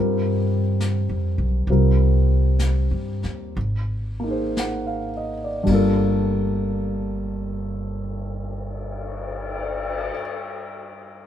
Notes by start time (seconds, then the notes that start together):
Already playing: G2 G3 C4 F4 A#4
0.80 snare, hi-hat pedal
1.09 F2
1.38 B1
1.67 C2 G3 C4 F4, brush sweep
1.71 A#4
2.59 snare, hi-hat pedal
2.91 G2
3.23 D#2, snare
3.55 G#1, brush sweep
4.20 A#3 D#4
4.27 G#4 C5
4.57 F#5, snare, hi-hat pedal
4.87 F5
5.17 D#5
5.44 D5
5.63 G2 G3, kick, crash
5.68 G1 A#3
5.72 F4 A4
6.45 cymbal swell